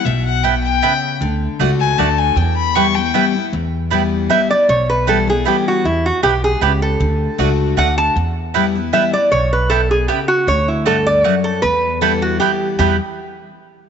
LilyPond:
<<
  \new Staff \with { instrumentName = "Fiddle" } { \time 3/4 \key e \dorian \tempo 4 = 155 e''8 fis''8 g''8 g''4. | r4. gis''8 a''8 gis''8 | g''8 b''8 cis'''8 g''4~ g''16 r16 | r2. |
r2. | r2. | r2. | r2. |
r2. | r2. | r2. | r2. | }
  \new Staff \with { instrumentName = "Resonator guitar played with a steel bar" } { \time 3/4 \key e \dorian r2. | r2. | r2. | r2 e''8 d''8 |
cis''8 b'8 a'8 gis'8 g'8 fis'8 | e'8 fis'8 g'8 gis'8 g'8 a'8~ | a'4 r4 fis''8 a''8 | r2 e''8 d''8 |
cis''8 b'8 a'8 gis'8 g'8 fis'8 | cis''8 e'8 a'8 d''8 cis''8 a'8 | b'4 a'8 fis'8 g'8. r16 | g'8 r2 r8 | }
  \new Staff \with { instrumentName = "Mandolin" } { \time 3/4 \key e \dorian r4 <b e' b' g''>16 r8. <b e' b' g''>16 r8. | r4 <a fis' d'' fis''>16 r8. <a fis' d'' fis''>16 r8. | r4 <b e' b' g''>16 r8. <b e' b' g''>16 r8. | r4 <b e' b' g''>16 r8. <b e' b' g''>16 r8. |
r4 <b e' b' g''>16 r8. <b e' b' g''>16 r8. | r4 <b e' b' g''>16 r8. <b e' b' g''>16 r8. | r4 <a fis' d'' fis''>16 r8. <a fis' d'' fis''>16 r8. | r4 <b e' b' g''>16 r8. <b e' b' g''>16 r8. |
r4 <b e' b' g''>16 r8. <b e' b' g''>16 r8. | r4 <a fis' d'' fis''>16 r8. <a fis' d'' fis''>16 r8. | r4 <b e' b' g''>16 r8. <b e' b' g''>16 r8. | <b e' b' g''>8 r2 r8 | }
  \new Staff \with { instrumentName = "Steel-string acoustic guitar" } { \time 3/4 \key e \dorian << { r2. | r4 <a d' fis'>4 <d a d' fis'>4 | r4 <e g b e'>8 <b e'>8 <e g b e'>8 <b e'>8 | r4 <e g b e'>4 <e g b e'>8 <b e'>8 |
r4 <e g b e'>8 <b e'>8 <e g b e'>4 | r2. | r4 <a d' fis'>4 <d a d' fis'>4 | r4 <e g b e'>8 <b e'>8 <e g b e'>8 <b e'>8 |
r2. | r2. | r4 <e g b e'>4 <e g b e'>4 | <e, b, e g b e'>8 r2 r8 | } \\ { b,4 b,4 cis4 | d2 r4 | e,2 r4 | e,2 r4 |
b,2 r4 | e,4 b,4 cis4 | d2 r4 | e,2 r4 |
b,4 b,4 cis4 | d4 g,4 fis,4 | e,2 r4 | r2. | } >> }
  \new Staff \with { instrumentName = "Upright bass" } { \clef bass \time 3/4 \key e \dorian b,,2. | d,4 cis,4 d,4 | e,2. | e,2. |
b,,2. | e,4 b,,4 cis,4 | d,4 cis,4 d,4 | e,2. |
b,,2. | d,2. | e,2. | e,8 r2 r8 | }
>>